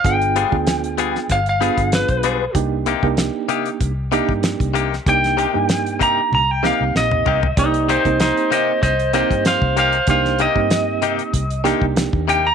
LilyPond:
<<
  \new Staff \with { instrumentName = "Lead electric guitar" } { \time 4/4 \key c \minor \tempo 4 = 96 g''2 f''16 f''8. b'4 | r1 | g''4. bes''8 bes''16 g''16 f''8 ees''4 | <ees' c''>8 <ees' c''>8 <ees' c''>8 <c'' ees''>8 <c'' ees''>8 <c'' ees''>8 <c'' f''>8 <c'' f''>8 |
<c'' f''>8 ees''2 r4 g''16 bes''16 | }
  \new Staff \with { instrumentName = "Reed electric piano" } { \time 4/4 \key c \minor <b d' f' aes'>8 r16 <b d' f' aes'>4. r16 <b d' f' aes'>4~ <b d' f' aes'>16 r16 | <bes d' ees' g'>8 r16 <bes d' ees' g'>4. r16 <bes d' ees' g'>4~ <bes d' ees' g'>16 r16 | <bes d' ees' g'>8 r16 <bes d' ees' g'>4. r16 <bes c' ees' g'>4~ <bes c' ees' g'>16 r16 | <bes ees' g' d''>8 r16 <bes c' ees' g'>4. r16 <bes c' ees' g'>4~ <bes c' ees' g'>16 r16 |
<bes d' ees' g'>8 r16 <bes c' ees' g'>4. r16 <bes d' ees' g'>4~ <bes d' ees' g'>16 r16 | }
  \new Staff \with { instrumentName = "Clean electric guitar" } { \time 4/4 \key c \minor r8 <g b f' aes'>8 r8 <g b f' aes'>8 r8 <g b f' aes'>8 r8 <g b f' aes'>8 | r8 <c bes ees' g'>8 r8 <c bes ees' g'>8 r8 <c bes ees' g'>8 r8 <c bes ees' g'>8 | r8 <c bes ees' g'>8 r8 <c bes ees' g'>8 r8 <c bes ees' g'>8 r8 <c bes ees' g'>8 | r8 <c bes ees' g'>8 r8 <c bes ees' g'>8 r8 <c bes ees' g'>8 r8 <c bes ees' g'>8 |
r8 <c bes ees' g'>8 r8 <c bes ees' g'>8 r8 <c bes ees' g'>8 r8 <c bes ees' g'>8 | }
  \new Staff \with { instrumentName = "Fingered electric bass" } { \clef bass \time 4/4 \key c \minor g,,8. d,4~ d,16 g,,8. g,,8 b,,8. | c,8. c,8 r8. c,8. g,8 c,8. | c,8. g,4~ g,16 c,8. c,16 bes,,8 c,8 | c,8. c,8 r8. c,8. g,8 c,8. |
c,8. g,4~ g,16 c,8. c,8 ees,8. | }
  \new DrumStaff \with { instrumentName = "Drums" } \drummode { \time 4/4 <hh bd>16 hh16 hh16 bd16 <hh sn>16 hh16 hh16 sn16 <hh bd>16 hh16 hh16 <hh bd>16 <hh sn>16 <hh bd>16 hh8 | <hh bd>8 hh16 bd16 <hh sn>8 hh16 hh16 <hh bd>8 hh16 bd16 <hh sn>16 <hh bd>16 hh16 sn16 | <hh bd>16 <hh sn>16 hh8 <hh sn>16 hh16 <hh bd>8 tommh8 sn8 sn16 toml16 tomfh16 tomfh16 | <hh bd>16 hh16 hh16 <hh bd>16 <hh sn>16 hh16 hh8 <hh bd>16 hh16 hh16 <hh bd>16 <hh sn>16 bd16 hh16 hh16 |
<hh bd>16 sn16 hh16 bd16 <hh sn>8 hh16 hh16 <hh bd>16 hh16 <hh sn>16 bd16 <hh sn>16 bd16 hh8 | }
>>